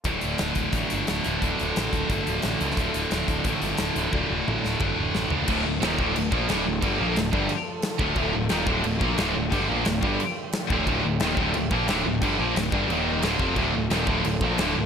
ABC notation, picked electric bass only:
X:1
M:4/4
L:1/8
Q:1/4=178
K:Dm
V:1 name="Picked electric bass" clef=bass
D,,, D,,, D,,, D,,, A,,, G,,, D,,, D,,, | D,,, D,,, A,,, D,,, G,,, D,,, A,,, ^C,, | D,,, D,,, D,,, D,,, A,,, G,,, D,,, D,,, | D,,, D,,, A,,, D,,, G,,, D,,, A,,, ^C,, |
D,,, D,,, _E,,, D,,, D,,, B,,, D,,, D,,, | G,,, B,,, D,,, G,,, z3 D,,, | D,,, D,,, _E,,, D,,, D,,, B,,, D,,, D,,, | G,,, B,,, D,,, G,,, z3 D,,, |
D,,, D,,, _E,,, D,,, D,,, B,,, D,,, D,,, | G,,, B,,, D,,, G,,, _E,,,2 D,,, F,,, | D,,, D,,, _E,,, D,,, D,,, B,,, D,,, D,,, |]